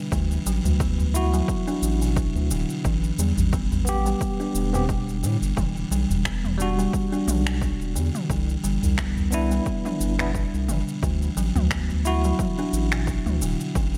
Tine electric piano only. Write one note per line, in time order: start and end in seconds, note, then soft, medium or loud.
1.14 2.83 E4 medium
1.14 2.84 F#4 medium
3.85 4.69 B3 medium
3.85 4.71 G4 medium
4.73 4.84 B3 medium
4.73 4.85 C4 medium
4.73 4.85 G4 medium
6.58 8.27 G3 medium
6.58 8.28 D4 medium
6.62 8.29 F#4 medium
9.31 10.14 B3 medium
9.31 10.15 D4 medium
9.31 10.16 E4 medium
10.19 10.30 B3 medium
10.19 10.30 D4 medium
10.19 10.31 E4 medium
12.05 13.74 E4 medium
12.05 13.75 F#4 loud